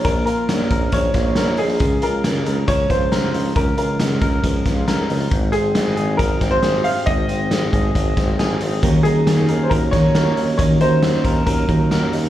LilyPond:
<<
  \new Staff \with { instrumentName = "Upright piano" } { \time 4/4 \key ees \dorian \tempo 4 = 137 bes'8 bes'4. des''4. aes'8~ | aes'8 bes'4. des''8 c''4. | bes'8 bes'2 r4. | r8 aes'4. bes'8. c''8. f''8 |
ees''2. r4 | r8 aes'4~ aes'16. c''32 bes'8 des''4. | des''8 c''4. bes'4. r8 | }
  \new Staff \with { instrumentName = "Clean electric guitar" } { \time 4/4 \key ees \dorian <bes, f des' f' bes'>8 f'8 des'8 bes'8 f8 f'8 bes'8 ees'16 f'16 | des8 f'8 aes8 bes'8 f8 f'8 bes'8 f'8 | des8 f'8 aes8 bes'8 f8 f'8 bes'8 ees'16 f'16 | aes,8 c'8 aes8 aes'8 ges8 c'8 aes'8 c'8 |
aes,8 c'8 aes8 aes'8 ges8 c'8 aes'8 c'8 | ees8 ees'8 des'8 bes'8 ges8 ees'8 bes'8 ees'8 | ees8 ees'8 des'8 bes'8 ges8 ees'8 bes'8 ees'8 | }
  \new Staff \with { instrumentName = "Steel-string acoustic guitar" } { \time 4/4 \key ees \dorian r1 | r1 | r1 | r1 |
r1 | <ees ges des' ees' bes'>8 <ees ges des' ees' bes'>8. <des' ees' bes'>8. <ges des' ees' bes'>8 <ees ges des' ees' bes'>8. <des' ees' bes'>8. | <ees ges des' ees' bes'>8 <ees ges des' ees' bes'>8. <des' ees' bes'>8. <ges des' ees' bes'>8 <ees ges des' ees' bes'>8. <des' ees' bes'>8. | }
  \new Staff \with { instrumentName = "Tuba" } { \clef bass \time 4/4 \key ees \dorian bes,,8 r8 bes,,8 bes,,8 bes,,8 bes,,8 bes,,8 bes,,8 | des,8 des,8 des,8 des,8 des,8 des,8 des,8 des,8 | des,8 des,8 des,8 des,8 des,8 des,8 des,8 des,8 | aes,,8 aes,,8 aes,,8 aes,,8 aes,,8 aes,,8 aes,,8 r8 |
aes,,8 aes,,8 aes,,8 aes,,8 aes,,8 aes,,8 aes,,8 aes,,8 | ees,8 ees,8 ees,8 ees,8 ees,8 ees,8 ees,8 ees,8 | ees,8 ees,8 ees,8 ees,8 ees,8 ees,8 ees,8 ees,8 | }
  \new DrumStaff \with { instrumentName = "Drums" } \drummode { \time 4/4 <hh bd>8 hh8 <hh sn>8 <hh bd>8 <hh bd>8 <hh bd sn>8 <hh sn>8 hho8 | <hh bd>8 hh8 <hh sn>8 hh8 <hh bd>8 <hh bd>8 <hh sn>8 hho8 | <hh bd>8 hh8 <hh sn>8 <hh bd>8 <hh bd>8 <hh bd sn>8 <hh sn>8 hho8 | <hh bd>8 hh8 <hh sn>8 hh8 <hh bd>8 <hh bd sn>8 <hh sn>8 hho8 |
<hh bd>8 hh8 <hh sn>8 <hh bd>8 <hh bd>8 <hh bd sn>8 <hh sn>8 hho8 | <hh bd>8 hh8 <hh sn>8 hh8 <hh bd>8 <hh bd sn>8 <hh sn>8 hho8 | <hh bd>8 hh8 <hh sn>8 <hh bd>8 <hh bd>8 <hh bd>8 <hh sn>8 hho8 | }
>>